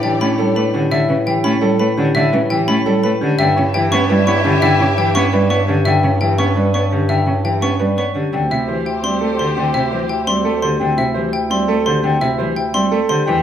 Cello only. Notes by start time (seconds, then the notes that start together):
0.03 E3
0.20 A3
0.38 G3
0.56 A3
0.74 D3
0.91 D3
1.09 C#3
1.26 E3
1.44 A3
1.61 G3
1.79 A3
1.98 D3
2.16 D3
2.33 C#3
2.50 E3
2.68 A3
2.86 G3
3.04 A3
3.22 D3
3.40 D3
3.57 C#3
3.75 E3
3.92 B3
4.10 G3
4.27 B3
4.45 D3
4.62 D3
4.79 C#3
4.97 E3
5.14 B3
5.32 G3
5.50 B3
5.68 D3
5.86 D3
6.03 C#3
6.21 E3
6.38 B3
6.56 G3
6.74 B3
6.91 D3
7.09 D3
7.26 C#3
7.44 E3
7.61 B3
7.80 G3
7.97 B3
8.15 D3
8.33 D3
8.51 C3
8.69 E3
9.05 G3
9.23 A3
9.40 D3
9.57 D3
9.75 C3
9.93 E3
10.28 G3
10.45 A3
10.63 D3
10.81 D3
10.98 C3
11.16 E3
11.50 G3
11.68 A3
11.87 D3
12.04 D3
12.22 C3
12.39 E3
12.75 G3
12.92 A3
13.10 D3
13.27 E3